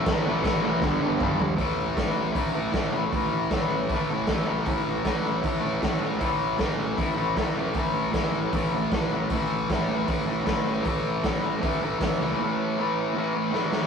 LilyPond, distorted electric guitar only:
\new Staff \with { instrumentName = "Distorted electric guitar" } { \clef bass \time 4/4 \key g \lydian \tempo 4 = 156 <a, e a>8 <a, e a>8 <a, e a>8 <a, e a>8 <g, d g>8 <g, d g>8 <g, d g>8 <g, d g>8 | <a, e a>4 <a, e a>4 <a, e a>8 <e a>8 <a, e a>8 <e a>8 | <a, e a>4 <a, e a>4 <a, e a>8 <e a>8 <a, e a>8 <e a>8 | <a, e a>4 <a, e a>4 <a, e a>8 <e a>8 <a, e a>8 <e a>8 |
<a, e a>4 <a, e a>4 <a, e a>8 <e a>8 <a, e a>8 <e a>8 | <a, e a>4 <a, e a>4 <a, e a>8 <e a>8 <a, e a>8 <e a>8 | <a, e a>4 <a, e a>4 <a, e a>8 <e a>8 <a, e a>8 <e a>8 | <a, e a>4 <a, e a>4 <a, e a>8 <e a>8 <a, e a>8 <e a>8 |
<a, e a>4 <a, e a>4 <a, e a>8 <e a>8 <a, e a>8 <e a>8 | }